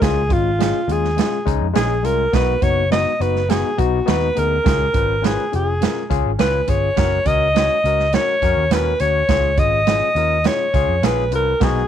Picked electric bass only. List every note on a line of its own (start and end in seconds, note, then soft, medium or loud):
0.02 0.32 C#2 loud
0.30 0.72 G#1 loud
0.88 1.19 D#2 medium
1.47 1.57 C#2 medium
1.61 1.71 F2 loud
1.76 2.05 A#1 medium
2.05 2.26 C2 medium
2.33 2.54 B1 loud
2.63 3.04 F#1 medium
3.20 3.62 F#1 medium
3.78 3.99 B1 loud
4.08 4.29 D#2 medium
4.37 4.58 D2 medium
4.66 4.87 C#2 loud
4.95 5.36 G#1 medium
5.54 5.85 F1 medium
6.11 6.21 C#2 medium
6.26 6.36 G#1 loud
6.40 6.60 C#2 medium
6.68 6.89 G1 loud
6.97 7.18 F#1 loud
7.26 7.68 C#2 medium
7.84 8.16 C#2 medium
8.42 8.53 F2 medium
8.57 8.67 D#2 loud
8.71 8.92 D#2 medium
9.00 9.21 D2 loud
9.29 9.59 C#2 loud
9.58 10.00 G#1 medium
10.15 10.47 D#2 loud
10.74 10.85 C#2 medium
10.89 10.99 F2 loud
11.02 11.32 A#1 medium
11.32 11.53 C2 medium
11.61 11.82 B1 loud